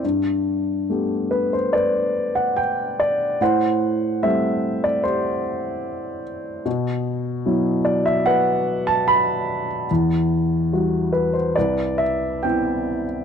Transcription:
<<
  \new Staff \with { instrumentName = "Grand piano" } { \time 4/4 \key g \major \tempo 4 = 73 << { r4. b'16 c''16 d''8. fis''16 g''8 d''8 | fis''4 e''8. d''16 c''4. r8 | r4. d''16 e''16 fis''8. a''16 b''8. r16 | r4. b'16 c''16 d''8 e''8 g''8. r16 | } \\ { r2 b'2 | c''2 g'2 | r2 b'2 | r2 b'2 | } >> }
  \new Staff \with { instrumentName = "Grand piano" } { \time 4/4 \key g \major g,4 <a b g'>2. | a,4 <g a c'>2. | b,4 <fis b e'>2. | e,4 <g e' fis'>4 c,4 <b c' e'>4 | }
>>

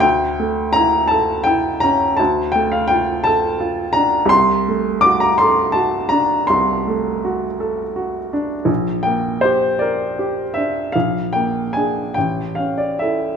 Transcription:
\new Staff \with { instrumentName = "Upright piano" } { \time 12/8 \key a \phrygian \tempo 4. = 55 << { g''4 bes''8 a''8 g''8 bes''8 a''8 g''16 f''16 g''8 a''4 bes''8 | c'''4 d'''16 bes''16 c'''8 a''8 bes''8 c'''2~ c'''8 r8 | r8 g''8 c''8 d''4 e''8 f''8 g''8 aes''8 g''8 f''16 d''16 e''8 | } \\ { d,8 a8 e'8 a'8 e'8 cis'8 d,8 a8 f'8 a'8 f'8 d'8 | c,8 a8 fis'8 a'8 fis'8 d'8 c,8 a8 fis'8 a'8 fis'8 d'8 | bes,,8 bes8 g'8 bes'8 g'8 d'8 bes,,8 bes8 <d' aes'>8 a,,8 cis'8 <e' a'>8 | } >> }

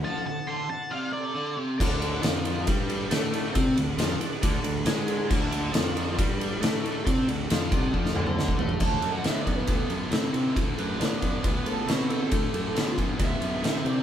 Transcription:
<<
  \new Staff \with { instrumentName = "Lead electric guitar" } { \time 4/4 \key d \mixolydian \tempo 4 = 137 a''8 a''8 c'''8 a''8 f''8 d''4 r8 | r1 | r1 | r1 |
r1 | r1 | r1 | r1 | }
  \new Staff \with { instrumentName = "Lead electric guitar" } { \time 4/4 \key d \mixolydian fis''8 fis''8 a''8 fis''8 d''8 a'4 r8 | r1 | r1 | r1 |
r1 | \tuplet 3/2 { a''4 fis''8 e''8 d''8 b'8 } a'8 r4. | r8 b'8 d''4 b'8 a'8 fis'8 a'8~ | a'4. r8 e''4. d''8 | }
  \new Staff \with { instrumentName = "Tonewheel organ" } { \time 4/4 \key d \mixolydian r1 | <a' d'' fis''>8 <a' d'' fis''>8 <a' d'' fis''>8 <a' d'' fis''>8 <a' d'' fis''>8 <a' d'' fis''>8 <a' d'' fis''>8 <a' d'' fis''>8 | <a' d'' fis''>8 <a' d'' fis''>8 <a' d'' fis''>8 <a' d'' fis''>8 <a' d'' fis''>8 <a' d'' fis''>8 <a' d'' fis''>8 <a' d'' fis''>8 | <a' d'' fis''>8 <a' d'' fis''>8 <a' d'' fis''>8 <a' d'' fis''>8 <a' d'' fis''>8 <a' d'' fis''>8 <a' d'' fis''>8 <a' d'' fis''>8 |
<a' d'' fis''>8 <a' d'' fis''>8 <a' d'' fis''>8 <a' d'' fis''>8 <a' d'' fis''>8 <a' d'' fis''>8 <a' d'' fis''>8 <a' d'' fis''>8 | r1 | r1 | r1 | }
  \new Staff \with { instrumentName = "Overdriven electric guitar" } { \clef bass \time 4/4 \key d \mixolydian f8 d8 d8 r8 c4 d8 c8 | d4 f4 g4 a4 | c'8 d8 f8 r8 d8 d8 gis4 | d4 f4 g4 a4 |
c'8 d8 f8 c8 f8 d4 a8 | <d a>8 <d a>8 <d b>8 <d b>8 <d b>8 <d b>8 <d c'>8 <d c'>8 | <d a>8 <d a>8 <d b>8 <d b>8 <d b>8 <d b>8 <d c'>8 <d c'>8 | <d a>8 <d a>8 <d b>8 <d b>8 <d b>8 <d b>8 <d c'>8 <d c'>8 | }
  \new Staff \with { instrumentName = "Fingered electric bass" } { \clef bass \time 4/4 \key d \mixolydian r1 | d,4 f,4 g,4 a,4 | c8 d,8 f,8 r8 d,8 d,8 gis,4 | d,4 f,4 g,4 a,4 |
c8 d,8 f,8 c,8 f,8 d,4 a,8 | d,8 fis,8 a,8 fis,8 d,8 fis,8 a,8 c8 | d,8 fis,8 a,8 fis,8 d,8 a,8 b,4 | d,8 fis,8 a,8 fis,8 d,8 fis,8 a,8 c8 | }
  \new DrumStaff \with { instrumentName = "Drums" } \drummode { \time 4/4 r4 r4 r4 r4 | <cymc bd>8 cymr8 <cymr sn>8 cymr8 <bd cymr>8 cymr8 <cymr sn>8 cymr8 | <bd cymr>8 cymr8 <cymr sn>8 cymr8 <bd cymr>8 cymr8 <cymr sn>8 cymr8 | <cymc bd>8 cymr8 <cymr sn>8 cymr8 <bd cymr>8 cymr8 <cymr sn>8 cymr8 |
<bd cymr>8 cymr8 <cymr sn>8 <bd cymr>8 bd16 sn16 toml16 toml16 sn16 bd16 tomfh16 tomfh16 | <cymc bd>8 cymr8 <cymr sn>8 <bd cymr>8 <bd cymr>8 cymr8 <cymr sn>8 cymr8 | <bd cymr>8 cymr8 <cymr sn>8 <bd cymr>8 <bd cymr>8 cymr8 <cymr sn>8 cymr8 | <bd cymr>8 cymr8 <cymr sn>8 <bd cymr>8 <bd cymr>8 cymr8 <cymr sn>8 cymr8 | }
>>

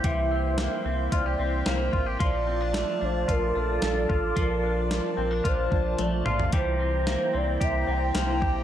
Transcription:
<<
  \new Staff \with { instrumentName = "Analog synth pad" } { \time 4/4 \key c \mixolydian \tempo 4 = 111 <e' c'' g''>1 | <f' d'' a''>1~ | <f' d'' a''>1 | <e' c'' g'' bes''>1 | }
  \new Staff \with { instrumentName = "Soft synth lead" } { \time 4/4 \key c \mixolydian e''4 e''4 d''4 c''8. r16 | d''4. c''8 bes'8 a'4. | bes'4 bes'4 c''4 d''8. r16 | c''4. d''8 e''8 g''4. | }
  \new Staff \with { instrumentName = "Clean electric guitar" } { \time 4/4 \key c \mixolydian <e bes c' g'>8 c'8 bes8 c'8 f'16 g'16 c'8 bes8 f'16 g'16 | <f f'>8 c'16 d'16 a8 d'8 f'8 d'4 f'8 | <f f'>8 d'4 c'16 d'16 f'8 d'8 a8 f'8 | <e g'>8 c'8 bes8 c'8 g'8 c'8 bes8 g'8 | }
  \new Staff \with { instrumentName = "Sub bass" } { \clef bass \time 4/4 \key c \mixolydian c,4~ c,16 r16 c,8 c,8 c,8 c,8 a,,8 | bes,,4~ bes,,16 r16 bes,,8 bes,,8 bes,,8 bes,,8 a,,8 | bes,,4~ bes,,16 r16 bes,,8 bes,,8 bes,,8 bes,,8 bes,,8 | c,4~ c,16 r16 c,8 c,8 c,8 c,8 bes,,8 | }
  \new DrumStaff \with { instrumentName = "Drums" } \drummode { \time 4/4 <hh bd>4 <hh sn>4 <hh bd>4 <hh sn>8 bd8 | <hh bd>4 <hh sn>4 <hh bd>4 <hh sn>8 bd8 | <hh bd>4 <hh sn>4 <hh bd>8 bd8 <hh tommh>8 toml16 tomfh16 | <hh bd>4 <hh sn>4 <hh bd>4 <hh sn>8 bd8 | }
>>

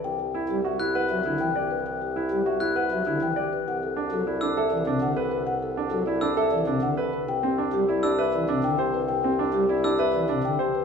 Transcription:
<<
  \new Staff \with { instrumentName = "Glockenspiel" } { \time 6/4 \key c \lydian \tempo 4 = 199 r2 r8 fis'''8 r2. | r2 r8 fis'''8 r2. | r2 r8 e'''8 r2. | r2 r8 e'''8 r2. |
r2 r8 e'''8 r2. | r2 r8 e'''8 r2. | }
  \new Staff \with { instrumentName = "Marimba" } { \time 6/4 \key c \lydian g''8 g'8 r8 g'8 e''8 g'8 fis''8 e''8 r8 g''8 g'8 b'8 | g''8 g'8 r8 g'8 e''8 g'8 fis''8 e''8 r8 g''8 g'8 b'8 | fis''8 a'8 r8 a'8 d''8 a'8 e''8 d''8 r8 fis''8 a'8 b'8 | fis''8 a'8 r8 a'8 d''8 a'8 e''8 d''8 r8 fis''8 a'8 b'8 |
g''8 g'8 r8 g'8 d''8 g'8 e''8 d''8 r8 g''8 g'8 b'8 | g''8 g'8 r8 g'8 d''8 g'8 e''8 d''8 r8 g''8 g'8 b'8 | }
  \new Staff \with { instrumentName = "Grand piano" } { \time 6/4 \key c \lydian r4 e'8 r8 fis'8 e'8 b'8 r8 e'8 r8 d''8 r8 | r4 e'8 r8 fis'8 e'8 b'8 r8 e'8 r8 d''8 r8 | r4 d'8 r8 e'8 d'8 a'8 r8 d'8 r8 b'8 r8 | r4 d'8 r8 e'8 d'8 a'8 r8 d'8 r8 b'8 r8 |
r8 c'8 d'8 r8 e'8 d'8 b'8 r8 d'8 r8 c''8 r8 | r8 c'8 d'8 r8 e'8 d'8 b'8 r8 d'8 r8 c''8 r8 | }
  \new Staff \with { instrumentName = "Pipe organ" } { \clef bass \time 6/4 \key c \lydian r4. g8 r4. fis8 d8 e8 r4 | r4. g8 r4. fis8 d8 e8 r4 | r4. fis8 r4. e8 c8 d8 r4 | r4. fis8 r4. e8 c8 d8 r4 |
r4. g8 r4. e8 c8 d8 r4 | r4. g8 r4. e8 c8 d8 r4 | }
  \new Staff \with { instrumentName = "Bassoon" } { \clef bass \time 6/4 \key c \lydian c,1.~ | c,1. | c,1.~ | c,1. |
c,1.~ | c,1. | }
>>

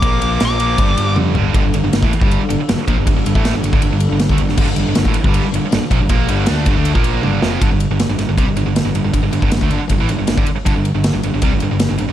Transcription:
<<
  \new Staff \with { instrumentName = "Lead electric guitar" } { \time 4/4 \key g \minor \tempo 4 = 158 d'''4 d'''2 r4 | r1 | r1 | r1 |
r1 | r1 | r1 | r1 | }
  \new Staff \with { instrumentName = "Analog synth pad" } { \time 4/4 \key g \minor <bes f' c''>2 <g d' a'>2 | <g d' a'>1~ | <g d' a'>1~ | <g d' a'>1~ |
<g d' a'>1 | r1 | r1 | r1 | }
  \new Staff \with { instrumentName = "Distorted electric guitar" } { \clef bass \time 4/4 \key g \minor <bes, f bes>2 <g, d g>2 | <g, d>16 <g, d>16 <g, d>16 <g, d>16 <g, d>16 <a, e>16 r16 <g, d g>8 r16 <g, d>16 r16 <g, d>16 r16 <bes, f>16 <g, d>16 | <g, d>16 <g, d>16 <g, d>16 <a, e a>8 <g, d>16 <g, d>16 <g, d>16 <g, d>16 <g, d>8 <g, d>8 <d a>16 <g, d>16 <g, d>16 | <g, d>16 <g, d>16 <g, d>16 <g, d>16 <g, d>16 <a, e>16 r16 <g, d g>8 r16 <g, d>16 r16 <g, d>16 r16 <bes, f>16 <g, d>16 |
<bes, f bes>8 <g, d g>8 <d a d'>8 <g, d>16 <d a d'>8 <bes, f bes>8. <g, d g>8 <f, c f>8 | <g, d>16 <g, d>8 <g, d>8 <g, d>16 <g, d>16 <g, d>16 <c g>16 <g, d>16 <g, d>16 <g, d>8 <g, d>16 <g, d>16 <g, d>16 | <g, d>16 <g, d>16 <g, d>16 <g, d>16 <g, d>16 <d a>16 <g, d>16 r16 <g, d>16 <a, e>16 <g, d>16 <g, d>16 <g, d>16 <g, d>16 r8 | <g, d>16 <g, d>8 <g, d>8 <g, d>16 <g, d>16 <g, d>16 <c g>16 <g, d>16 <g, d>16 <g, d>8 <g, d>16 <g, d>16 g,16 | }
  \new Staff \with { instrumentName = "Distorted electric guitar" } { \clef bass \time 4/4 \key g \minor <bes, f bes>4. <bes, f bes>8 <g, d g>4. <g, d g>8 | <g, d>16 <g, d>16 <g, d>16 <g, d>16 <g, d>16 <a, e>16 r16 <g, d g>8 r16 <g, d>16 r16 <g, d>16 r16 <bes, f>16 <g, d>16 | <g, d>16 <g, d>16 <g, d>16 <a, e a>8 <g, d>16 <g, d>16 <g, d>16 <g, d>16 <g, d>8 <g, d>8 <d a>16 <g, d>16 <g, d>16 | <g, d>16 <g, d>16 <g, d>16 <g, d>16 <g, d>16 <a, e>16 r16 <g, d g>8 r16 <g, d>16 r16 <g, d>16 r16 <bes, f>16 <g, d>16 |
<bes, f bes>8 <g, d g>8 <d a d'>8 <g, d>16 <d a d'>8 <bes, f bes>8. <g, d g>8 <f, c f>8 | <g, d>16 <g, d>8 <g, d>8 <g, d>16 <g, d>16 <g, d>16 <c g>16 <g, d>16 <g, d>16 <g, d>8 <g, d>16 <g, d>16 <g, d>16 | <g, d>16 <g, d>16 <g, d>16 <g, d>16 <g, d>16 <d a>16 <g, d>16 r16 <g, d>16 <a, e>16 <g, d>16 <g, d>16 <g, d>16 <g, d>16 r8 | <g, d>16 <g, d>8 <g, d>8 <g, d>16 <g, d>16 <g, d>16 <c g>16 <g, d>16 <g, d>16 <g, d>8 <g, d>16 <g, d>16 <g, d>16 | }
  \new Staff \with { instrumentName = "Fingered electric bass" } { \clef bass \time 4/4 \key g \minor bes,,8 bes,,8 bes,,4 g,,8 g,,8 f,8 g,,8 | g,,16 g,,16 g,,16 g,,16 g,,16 a,,16 r16 g,,8 r16 g,,16 r16 g,,16 r16 bes,,16 g,,16 | g,,16 g,,16 g,,16 a,,8 g,,16 g,,16 g,,16 g,,16 g,,8 g,,8 d,16 g,,16 g,,16 | g,,16 g,,16 g,,16 g,,16 g,,16 a,,16 r16 g,,8 r16 g,,16 r16 g,,16 r16 bes,,16 g,,16 |
bes,,8 g,,8 d,8 g,,16 d,8 bes,,8. g,,8 f,,8 | g,,16 g,,8 g,,8 g,,16 g,,16 g,,16 c,16 g,,16 g,,16 g,,8 g,,16 g,,16 g,,16 | g,,16 g,,16 g,,16 g,,16 g,,16 d,16 g,,16 r16 g,,16 a,,16 g,,16 g,,16 g,,16 g,,16 r8 | g,,16 g,,8 g,,8 g,,16 g,,16 g,,16 c,16 g,,16 g,,16 g,,8 g,,16 g,,16 g,,16 | }
  \new DrumStaff \with { instrumentName = "Drums" } \drummode { \time 4/4 <bd cymr>8 cymr8 <cymr sn>8 cymr8 <bd cymr>8 cymr8 tommh8 tomfh8 | <bd cymr>8 cymr8 <cymr sn>16 bd16 cymr16 bd16 cymr8 cymr8 <cymr sn>8 <bd cymr>8 | <bd cymr>8 cymr16 bd16 <cymr sn>8 cymr16 bd16 cymr8 cymr8 <cymr sn>16 bd16 cymr16 sn16 | <cymc bd>8 cymr8 <cymr sn>16 bd16 cymr16 bd16 cymr8 cymr8 <cymr sn>8 <bd cymr>8 |
<bd cymr>8 cymr8 <cymr sn>8 <bd cymr>8 cymr16 bd16 cymr8 tommh8 sn8 | <bd cymr>8 cymr8 <cymr sn>8 <cymr sn>8 <bd cymr>8 cymr8 <cymr sn>8 cymr8 | <bd cymr>8 cymr16 bd16 <cymr sn>16 bd16 cymr8 <bd cymr>8 cymr8 <cymr sn>16 bd16 cymr8 | <bd cymr>8 cymr8 <cymr sn>8 cymr8 <bd cymr>8 cymr8 <cymr sn>8 cymr8 | }
>>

